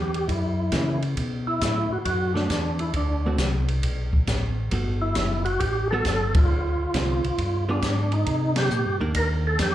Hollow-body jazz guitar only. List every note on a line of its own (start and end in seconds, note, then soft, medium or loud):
0.73 1.00 E3 medium
0.73 1.00 A#3 medium
0.73 1.00 C#4 medium
2.36 2.48 F#3 medium
2.36 2.48 A3 medium
2.36 2.49 D4 medium
3.26 3.38 D3 soft
3.26 3.38 A3 medium
3.26 3.38 C4 medium
3.26 3.39 F#4 soft
4.72 5.40 G3 soft
4.72 5.40 B3 soft
4.72 5.41 F#4 soft
4.72 5.41 A4 soft
5.92 6.04 G3 medium
5.92 6.05 B3 medium
5.92 6.05 F#4 medium
5.92 6.05 A4 medium
6.95 7.21 D3 medium
6.95 7.21 G#3 soft
6.95 7.22 C4 medium
6.95 7.22 F4 medium
7.69 7.81 G3 medium
7.69 7.81 B3 medium
7.69 7.82 F4 medium
7.69 7.82 G#4 medium
9.01 9.56 D#3 medium
9.01 9.57 A#3 medium
9.01 9.57 D4 medium